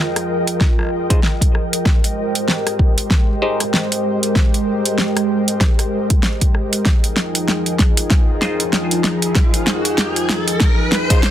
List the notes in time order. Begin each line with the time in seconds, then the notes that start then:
Already playing: F3 F4 G#4 A#4 D#5 G5
0.16 cross-stick, closed hi-hat
0.47 closed hi-hat
0.61 kick, snare
0.79 cross-stick
0.81 cross-stick
0.83 cross-stick
0.85 cross-stick
0.87 cross-stick
1.10 D#4 F4 G#4 C5, kick, closed hi-hat
1.23 snare
1.41 kick, closed hi-hat
1.55 cross-stick
1.73 closed hi-hat
1.85 G#3 G4 C5, kick, snare
2.04 closed hi-hat
2.35 closed hi-hat
2.48 snare
2.67 cross-stick, closed hi-hat
2.79 kick
2.98 closed hi-hat
3.11 kick, snare
3.42 D#4 G4 G#4 C5
3.60 cross-stick, closed hi-hat
3.74 snare
3.92 closed hi-hat
4.23 closed hi-hat
4.36 kick, snare
4.54 closed hi-hat
4.86 closed hi-hat
4.98 snare
5.17 cross-stick, closed hi-hat
5.48 closed hi-hat
5.61 kick, snare
5.79 cross-stick, closed hi-hat
6.10 kick, closed hi-hat
6.23 snare
6.41 kick, closed hi-hat
6.55 cross-stick
6.73 closed hi-hat
6.85 F3 D#4 F4 G#4, kick, snare, riser
7.04 closed hi-hat
7.17 snare
7.35 closed hi-hat
7.48 snare
7.66 closed hi-hat
7.79 kick, snare
7.97 closed hi-hat
8.10 kick, snare
8.42 D#4 F4 G#4 C5, snare
8.60 closed hi-hat
8.73 snare
8.91 closed hi-hat
9.04 snare
9.22 closed hi-hat
9.35 kick, snare
9.54 closed hi-hat
9.67 snare
9.85 closed hi-hat
9.98 snare
10.16 closed hi-hat
10.29 snare
10.48 closed hi-hat
10.60 kick, snare
10.92 snare
11.10 D#4 F4 G#4 C5, kick, closed hi-hat
11.23 snare